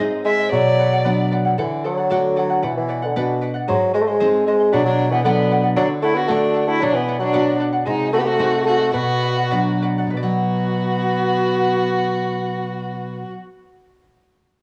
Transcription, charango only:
0.00 0.24 G#4 medium
0.00 0.24 C5 medium
0.00 0.25 D#5 loud
0.25 0.39 G#4 medium
0.25 0.39 C5 medium
0.25 0.38 D#5 medium
0.39 0.53 C5 soft
0.39 0.52 D#5 soft
0.53 0.77 B4 medium
0.53 0.78 D5 medium
0.53 0.79 F#5 medium
0.79 0.92 B4 medium
0.79 0.92 D5 medium
0.79 0.92 F#5 medium
0.93 1.04 D5 soft
0.93 1.05 F#5 medium
1.05 1.30 B4 medium
1.05 1.31 D5 medium
1.05 1.31 F#5 medium
1.32 1.45 B4 medium
1.32 1.45 D5 medium
1.32 1.44 F#5 medium
1.45 1.58 D5 soft
1.45 1.58 F#5 medium
1.58 1.83 A4 medium
1.58 1.84 D5 medium
1.58 1.85 F#5 medium
1.84 1.97 A4 medium
1.84 1.98 D5 medium
1.84 1.96 F#5 medium
1.98 2.10 D5 soft
1.98 2.10 F#5 soft
2.10 2.35 A4 medium
2.10 2.36 D5 medium
2.10 2.36 F#5 medium
2.36 2.50 A4 medium
2.36 2.50 D5 medium
2.36 2.49 F#5 medium
2.50 2.62 D5 soft
2.50 2.62 F#5 medium
2.62 2.87 B4 medium
2.62 2.88 D5 medium
2.62 2.89 F#5 medium
2.88 3.02 B4 medium
2.88 3.02 D5 medium
2.88 3.01 F#5 medium
3.02 3.15 D5 soft
3.02 3.15 F#5 medium
3.16 3.40 B4 medium
3.16 3.40 D5 medium
3.16 3.42 F#5 medium
3.41 3.55 B4 medium
3.41 3.54 D5 medium
3.41 3.53 F#5 medium
3.54 3.68 D5 soft
3.54 3.67 F#5 medium
3.68 3.92 G#4 medium
3.68 3.93 C5 medium
3.68 3.94 D#5 medium
3.94 4.07 G#4 medium
3.94 4.07 C5 medium
3.94 4.06 D#5 medium
4.07 4.19 C5 soft
4.07 4.20 D#5 soft
4.20 4.45 G#4 medium
4.20 4.47 C5 medium
4.20 4.47 D#5 medium
4.46 4.60 G#4 medium
4.46 4.60 C5 medium
4.46 4.59 D#5 medium
4.60 4.73 C5 soft
4.60 4.72 D#5 soft
4.72 4.97 B4 medium
4.72 4.98 D5 medium
4.72 4.98 F#5 medium
4.98 5.12 B4 medium
4.98 5.12 D5 medium
4.98 5.11 F#5 medium
5.12 5.24 D5 soft
5.12 5.25 F#5 soft
5.24 5.50 B4 medium
5.24 5.50 D5 medium
5.24 5.51 F#5 medium
5.51 5.64 B4 medium
5.51 5.64 D5 medium
5.51 5.62 F#5 medium
5.63 5.76 D5 soft
5.63 5.76 F#5 soft
5.76 6.01 A4 medium
5.76 6.01 D5 medium
5.76 6.02 F#5 medium
6.02 6.16 A4 medium
6.02 6.15 D5 medium
6.02 6.14 F#5 medium
6.15 6.28 D5 soft
6.15 6.27 F#5 soft
6.28 6.53 A4 medium
6.28 6.54 D5 medium
6.28 6.54 F#5 medium
6.54 6.68 A4 medium
6.54 6.69 D5 medium
6.54 6.67 F#5 medium
6.68 6.80 D5 soft
6.68 6.81 F#5 soft
6.81 7.07 B4 medium
6.81 7.07 D5 medium
6.81 7.08 F#5 medium
7.08 7.21 B4 medium
7.08 7.21 D5 medium
7.08 7.19 F#5 medium
7.20 7.33 D5 soft
7.20 7.33 F#5 medium
7.33 7.58 B4 medium
7.33 7.59 D5 medium
7.33 7.60 F#5 loud
7.59 7.73 B4 medium
7.59 7.72 D5 medium
7.59 7.71 F#5 medium
7.72 7.86 D5 soft
7.72 7.86 F#5 medium
7.85 8.11 G#4 medium
7.85 8.12 C5 medium
7.85 8.12 D#5 medium
8.12 8.26 G#4 medium
8.12 8.26 C5 medium
8.12 8.25 D#5 medium
8.26 8.38 C5 soft
8.26 8.39 D#5 soft
8.39 8.65 G#4 medium
8.39 8.67 C5 medium
8.39 8.67 D#5 medium
8.67 8.80 G#4 medium
8.67 8.79 C5 medium
8.67 8.78 D#5 medium
8.79 8.93 C5 soft
8.79 8.93 D#5 soft
8.93 9.21 B4 medium
8.93 9.21 D5 medium
8.93 9.22 F#5 medium
9.22 9.37 B4 medium
9.22 9.37 D5 medium
9.22 9.35 F#5 medium
9.36 9.50 D5 soft
9.36 9.51 F#5 soft
9.51 9.81 B4 medium
9.51 9.81 D5 medium
9.51 9.82 F#5 medium
9.82 9.98 B4 medium
9.82 9.98 D5 medium
9.82 9.97 F#5 medium
9.98 10.10 D5 soft
9.98 10.14 F#5 medium
10.10 13.60 B4 medium
10.17 13.67 D5 medium
10.23 13.73 F#5 medium

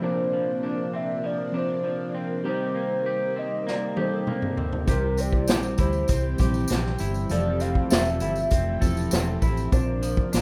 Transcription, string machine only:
0.00 9.68 C3 medium
0.00 2.42 F3 medium
0.00 4.84 A#3 medium
0.00 2.43 D4 medium
2.45 7.26 G3 medium
2.45 4.85 D#4 medium
4.88 7.28 E3 medium
4.88 9.68 G4 medium
7.30 9.70 A3 medium
9.72 10.41 C3 medium
9.72 10.41 A#3 medium
9.72 10.41 D4 medium

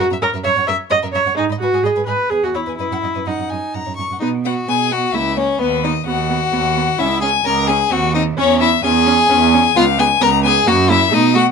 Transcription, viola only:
0.22 0.30 A#4 loud
0.45 0.67 C#5 loud
0.68 0.76 E5 loud
0.91 0.99 D#5 loud
1.13 1.36 C#5 medium
1.36 1.44 D#4 loud
1.60 1.85 F#4 medium
1.83 2.06 G#4 medium
2.07 2.32 B4 medium
2.30 2.45 G#4 medium
2.43 2.56 F#4 medium
2.55 2.77 E4 medium
2.78 3.28 E4 medium
3.27 3.74 D#4 medium
4.21 4.29 B3 medium
4.45 4.53 B3 medium
4.69 4.77 B3 medium
4.91 4.99 B3 medium
5.14 5.22 A#3 medium
5.36 5.44 A#3 medium
5.60 5.68 B3 medium
5.83 5.91 B3 medium
6.07 6.15 B3 medium
6.30 6.38 B3 medium
6.52 6.60 B3 medium
6.76 6.84 B3 medium
6.99 7.07 C#4 medium
7.23 7.31 C#4 medium
7.46 7.54 C#4 medium
7.69 7.77 C#4 medium
7.91 7.99 C4 medium
8.15 8.23 C4 medium
8.37 8.45 C#4 medium
8.59 8.67 C#4 medium
8.83 8.91 C#4 medium
9.06 9.14 C#4 medium
9.30 9.38 C#4 medium
9.53 9.61 C#4 medium
9.76 9.84 B3 loud
9.98 10.06 B3 medium
10.21 10.29 B3 medium
10.43 10.51 B3 medium
10.67 10.75 A#3 loud
10.89 10.97 A#3 medium
11.11 11.19 A3 medium
11.35 11.43 A3 medium

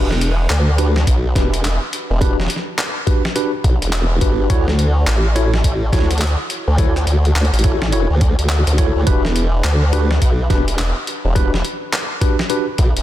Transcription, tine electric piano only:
0.78 0.93 D4 medium
0.78 0.93 F#4 medium
0.78 0.93 G4 medium
0.78 0.93 B4 loud
1.35 1.50 D4 medium
1.35 1.50 F#4 medium
1.35 1.50 G4 medium
1.35 1.50 B4 loud
2.21 2.36 D4 loud
2.21 2.36 F#4 medium
2.21 2.36 G4 medium
2.21 2.36 B4 loud
3.07 3.22 D4 medium
3.07 3.22 F#4 medium
3.07 3.22 G4 medium
3.07 3.22 B4 medium
3.35 3.51 D4 medium
3.35 3.50 F#4 medium
3.35 3.50 G4 medium
3.35 3.50 B4 medium
4.21 4.47 D4 medium
4.21 4.47 F#4 medium
4.21 4.47 G4 medium
4.21 4.47 B4 medium
4.50 4.65 E4 medium
4.50 4.65 F#4 medium
4.50 4.65 A4 medium
4.50 4.65 C#5 loud
5.35 5.50 E4 medium
5.35 5.50 F#4 medium
5.35 5.50 A4 medium
5.35 5.50 C#5 medium
5.93 6.08 E4 medium
5.93 6.08 F#4 medium
5.93 6.08 A4 medium
5.93 6.08 C#5 medium
6.78 6.93 E4 medium
6.78 6.93 F#4 medium
6.78 6.93 A4 medium
6.78 6.93 C#5 loud
7.64 7.79 E4 medium
7.64 7.79 F#4 medium
7.64 7.79 A4 medium
7.64 7.79 C#5 medium
7.93 8.08 E4 medium
7.93 8.08 F#4 medium
7.93 8.08 A4 medium
7.93 8.08 C#5 medium
8.79 9.05 E4 medium
8.79 9.05 F#4 medium
8.79 9.05 A4 medium
8.79 9.05 C#5 medium
9.07 9.22 D4 medium
9.07 9.22 F#4 medium
9.07 9.22 G4 medium
9.07 9.22 B4 loud
9.93 10.08 D4 medium
9.93 10.08 F#4 medium
9.93 10.08 G4 medium
9.93 10.08 B4 loud
10.50 10.65 D4 medium
10.50 10.65 F#4 medium
10.50 10.65 G4 medium
10.50 10.65 B4 loud
11.35 11.50 D4 medium
11.35 11.50 F#4 medium
11.35 11.50 G4 medium
11.35 11.50 B4 loud
12.21 12.36 D4 medium
12.21 12.36 F#4 medium
12.21 12.36 G4 medium
12.21 12.36 B4 medium
12.50 12.65 D4 medium
12.50 12.65 F#4 medium
12.50 12.65 G4 medium
12.50 12.65 B4 medium

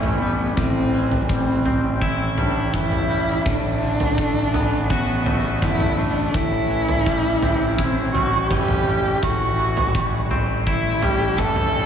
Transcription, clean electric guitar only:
0.00 0.93 E3 soft
0.00 0.21 G3 soft
0.00 0.94 E4 medium
0.22 1.28 G3 medium
0.58 2.38 A2 medium
0.94 2.72 E3 medium
1.30 2.37 G3 soft
1.65 3.46 C4 soft
2.02 3.46 E4 medium
2.38 3.09 G3 soft
2.74 3.46 E3 soft
3.10 3.46 G3 medium
3.46 5.26 A2 medium
3.82 5.61 D3 medium
4.18 5.25 A3 soft
4.54 6.34 B3 medium
4.90 6.34 F#4 medium
5.26 5.97 A3 medium
5.62 6.34 D3 medium
5.98 6.34 A3 medium
6.34 8.15 A2 medium
6.71 8.51 E3 soft
7.06 8.14 G3 soft
7.43 10.30 C4 medium
7.79 10.66 E4 medium
8.15 8.87 G3 soft
8.51 9.59 E3 medium
8.87 9.26 G3 soft
9.23 11.03 A2 medium
9.59 11.37 E3 soft
9.95 11.01 G3 soft
10.31 11.86 C4 medium
10.67 11.86 E4 medium
11.03 11.73 G3 soft
11.39 11.86 E3 medium
11.74 11.86 G3 soft

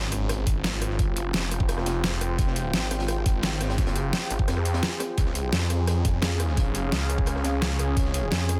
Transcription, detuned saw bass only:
0.00 0.91 G#1 loud
0.91 1.19 G1 loud
1.19 1.33 F#1 loud
1.34 1.85 F1 loud
1.86 2.20 F1 loud
2.21 2.37 F1 loud
2.39 2.72 F1 loud
2.74 3.71 G#1 loud
3.71 3.99 G1 loud
3.99 4.12 F#1 loud
4.30 4.47 G#1 medium
4.48 4.81 F2 loud
5.18 5.51 C#2 loud
5.53 6.91 F2 loud
6.92 7.43 C#2 loud
7.44 7.78 C#2 loud
7.79 7.95 C#2 medium
7.97 8.30 C#2 loud
8.32 8.60 F2 loud

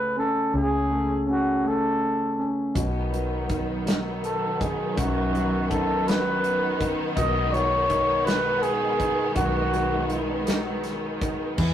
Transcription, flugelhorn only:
0.00 0.16 B4 medium
0.19 0.52 A4 medium
0.56 1.25 G#4 medium
1.30 1.69 F#4 medium
1.68 2.50 A4 medium
4.25 4.62 A4 medium
4.61 5.00 G#4 medium
4.98 5.71 F#4 medium
5.70 6.09 A4 medium
6.08 6.90 B4 medium
7.16 7.54 D#5 medium
7.53 8.27 C#5 loud
8.25 8.64 B4 medium
8.62 9.34 G#4 medium
9.35 10.42 F#4 medium

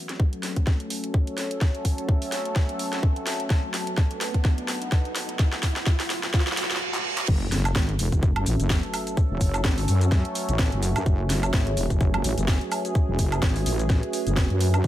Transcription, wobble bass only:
7.28 7.74 F#1 medium
7.75 7.97 G#1 medium
7.99 8.10 E1 loud
8.12 8.45 F#1 medium
8.46 8.58 A1 loud
8.60 8.81 F#1 loud
9.31 9.39 E1 loud
9.41 9.63 F#1 loud
9.64 9.86 G#1 medium
9.88 10.23 F#2 medium
10.49 10.70 A1 loud
10.72 10.94 F#1 loud
10.96 11.05 F#2 loud
11.06 11.52 F#1 loud
11.53 11.75 G#1 medium
11.77 11.88 E1 loud
11.90 12.23 F#1 loud
12.24 12.35 A1 loud
12.38 12.59 F#1 loud
13.08 13.17 E1 loud
13.19 13.41 F#1 loud
13.42 13.64 G#1 medium
13.66 14.01 A1 loud
14.27 14.48 F#1 loud
14.50 14.82 F#2 loud
14.84 14.87 E1 loud

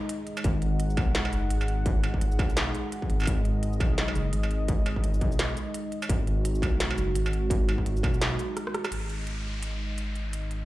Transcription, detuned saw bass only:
0.45 0.99 G#1 loud
0.97 1.32 B1 loud
1.33 1.49 F#1 medium
1.50 2.41 G#1 loud
2.39 2.73 B1 loud
3.10 3.26 G#1 medium
3.27 3.82 G#1 loud
3.80 4.15 B1 loud
4.15 4.32 F#1 medium
4.34 5.23 G#1 loud
5.21 5.56 B1 loud
6.09 6.64 G#1 loud
6.62 6.97 B1 loud
6.98 7.14 F#1 medium
7.15 8.05 G#1 loud
8.03 8.38 B1 loud
8.92 10.65 G#1 medium

